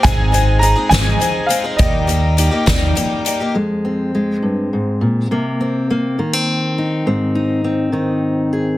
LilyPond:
<<
  \new Staff \with { instrumentName = "Upright piano" } { \time 6/8 \key f \dorian \tempo 4. = 68 aes''4 bes''8 aes''4 f''8 | ees''2 r4 | r2. | r2. |
r2. | }
  \new Staff \with { instrumentName = "Twelve-string acoustic guitar" } { \time 6/8 \key f \dorian <aes, ees aes c' ees' aes'>8 <aes c' ees' aes'>8 <aes c' ees' aes'>16 <aes c' ees' aes'>16 <aes, ees aes c' ees' aes'>8 <aes c' ees' aes'>8 <aes c' ees' aes'>16 <aes c' ees' aes'>16 | <ees g bes ees' g'>8 <g bes ees' g'>8 <g bes ees' g'>16 <bes ees' g'>16 <ees g bes ees' g'>8 <g bes ees' g'>8 <g bes ees' g'>16 <bes ees' g'>16 | r2. | r2. |
r2. | }
  \new Staff \with { instrumentName = "Steel-string acoustic guitar" } { \time 6/8 \key f \dorian << { r2. | r2. | aes8 c'8 aes2 | bes8 c'8 bes8 bes16 c'8. ees'8 |
c'8 ees'8 c'8 ees'4 aes'8 | } \\ { r2. | r2. | f,4. g,8 aes,8 bes,8 | c4. ees4. |
aes,4. ees4. | } >> }
  \new Staff \with { instrumentName = "Upright bass" } { \clef bass \time 6/8 \key f \dorian aes,,4. aes,,8 r4 | ees,4. ees,8 r4 | r2. | r2. |
r2. | }
  \new DrumStaff \with { instrumentName = "Drums" } \drummode { \time 6/8 <hh bd>8 hh8 hh8 <hh sn>8 hh8 hh8 | <hh bd>8 hh8 hh8 <hh bd sn>8 hh8 hh8 | r4. r4. | r4. r4. |
r4. r4. | }
>>